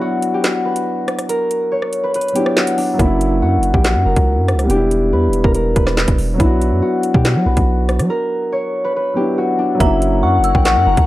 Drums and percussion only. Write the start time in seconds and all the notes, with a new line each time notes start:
0.22 closed hi-hat
0.44 snare, clap, closed hi-hat
0.76 closed hi-hat
1.08 cross-stick, closed hi-hat
1.19 cross-stick, closed hi-hat
1.29 closed hi-hat
1.51 closed hi-hat
1.82 cross-stick
1.93 closed hi-hat
2.14 closed hi-hat
2.21 closed hi-hat
2.28 closed hi-hat
2.36 closed hi-hat
2.46 cross-stick
2.57 snare, clap
2.67 closed hi-hat
2.78 open hi-hat
2.99 kick, closed hi-hat
3.21 closed hi-hat
3.63 closed hi-hat
3.74 kick
3.84 snare, clap, closed hi-hat
4.16 kick, closed hi-hat
4.48 cross-stick, closed hi-hat
4.59 cross-stick, closed hi-hat
4.70 closed hi-hat
4.91 closed hi-hat
5.33 closed hi-hat
5.44 kick
5.55 closed hi-hat
5.76 kick, closed hi-hat
5.87 cross-stick, snare
5.97 snare, clap
6.08 kick, closed hi-hat
6.18 open hi-hat
6.40 kick, closed hi-hat
6.62 closed hi-hat
7.03 closed hi-hat
7.14 kick
7.25 snare, clap, closed hi-hat
7.57 kick, closed hi-hat
7.89 cross-stick, closed hi-hat
7.99 cross-stick, closed hi-hat
9.80 kick, closed hi-hat
10.02 closed hi-hat
10.44 closed hi-hat
10.55 kick
10.65 snare, clap, closed hi-hat
10.97 kick, closed hi-hat